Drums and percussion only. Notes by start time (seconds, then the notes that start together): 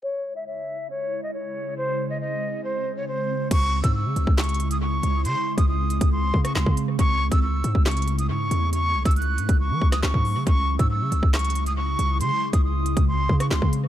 3.51 kick, closed hi-hat, crash
3.84 kick, closed hi-hat
4.16 closed hi-hat
4.27 kick
4.38 snare, clap, closed hi-hat
4.43 closed hi-hat
4.49 closed hi-hat
4.54 closed hi-hat
4.60 closed hi-hat
4.71 closed hi-hat
5.03 closed hi-hat
5.25 closed hi-hat
5.58 kick, closed hi-hat
5.90 closed hi-hat
6.01 kick, closed hi-hat
6.34 kick
6.45 cross-stick, closed hi-hat
6.55 snare, clap
6.66 kick
6.77 closed hi-hat
6.99 kick, closed hi-hat
7.32 kick, closed hi-hat
7.64 closed hi-hat
7.75 kick
7.86 snare, clap, closed hi-hat
7.91 closed hi-hat
7.97 closed hi-hat
8.02 closed hi-hat
8.08 closed hi-hat
8.19 closed hi-hat
8.51 closed hi-hat
8.73 closed hi-hat
9.05 kick, closed hi-hat
9.11 closed hi-hat
9.16 closed hi-hat
9.22 closed hi-hat
9.38 closed hi-hat
9.49 kick, closed hi-hat
9.82 kick
9.92 cross-stick, snare, closed hi-hat
10.03 snare, clap
10.14 kick
10.25 open hi-hat
10.47 kick, closed hi-hat
10.79 kick, closed hi-hat
11.12 closed hi-hat
11.23 kick
11.34 snare, clap, closed hi-hat
11.39 closed hi-hat
11.45 closed hi-hat
11.50 closed hi-hat
11.55 closed hi-hat
11.66 closed hi-hat
11.99 closed hi-hat
12.21 closed hi-hat
12.53 kick, closed hi-hat
12.86 closed hi-hat
12.97 kick, closed hi-hat
13.29 kick
13.40 cross-stick, closed hi-hat
13.51 snare, clap
13.62 kick
13.73 closed hi-hat